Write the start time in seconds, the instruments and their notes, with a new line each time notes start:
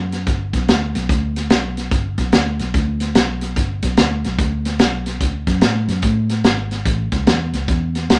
Already playing: fingered electric bass F#2
0.12 snare, closed hi-hat
0.26 fingered electric bass G1, kick, snare, closed hi-hat
0.53 fingered electric bass B1, kick, snare, closed hi-hat
0.68 fingered electric bass D2, snare, closed hi-hat
0.95 fingered electric bass B1, snare, closed hi-hat
1.09 fingered electric bass D2, kick, snare, closed hi-hat
1.36 snare, closed hi-hat
1.50 fingered electric bass B1, snare, closed hi-hat
1.77 snare, closed hi-hat
1.91 fingered electric bass G1, kick, snare, closed hi-hat
2.18 fingered electric bass B1, kick, snare, closed hi-hat
2.32 fingered electric bass D2, snare, closed hi-hat
2.59 fingered electric bass B1, snare, closed hi-hat
2.74 fingered electric bass D2, kick, snare, closed hi-hat
3.00 snare, closed hi-hat
3.15 fingered electric bass B1, snare, closed hi-hat
3.41 snare, closed hi-hat
3.56 fingered electric bass G1, kick, snare, closed hi-hat
3.82 fingered electric bass B1, kick, snare, closed hi-hat
3.97 fingered electric bass D2, snare, closed hi-hat
4.24 fingered electric bass B1, snare, closed hi-hat
4.38 fingered electric bass D2, kick, snare, closed hi-hat
4.65 snare, closed hi-hat
4.79 fingered electric bass B1, snare, closed hi-hat
5.06 snare, closed hi-hat
5.20 fingered electric bass D2, kick, snare, closed hi-hat
5.47 fingered electric bass F#2, kick, snare, closed hi-hat
5.61 fingered electric bass A2, snare, closed hi-hat
5.88 fingered electric bass F#2, snare, closed hi-hat
6.02 fingered electric bass A2, kick, snare, closed hi-hat
6.29 snare, closed hi-hat
6.44 fingered electric bass G#1, snare, closed hi-hat
6.71 snare, closed hi-hat
6.85 fingered electric bass A1, kick, snare, closed hi-hat
7.12 fingered electric bass C#2, kick, snare, closed hi-hat
7.27 fingered electric bass E2, snare, closed hi-hat
7.53 fingered electric bass C#2, snare, closed hi-hat
7.68 fingered electric bass E2, kick, snare, closed hi-hat
7.95 snare, closed hi-hat
8.09 fingered electric bass C#2, snare, closed hi-hat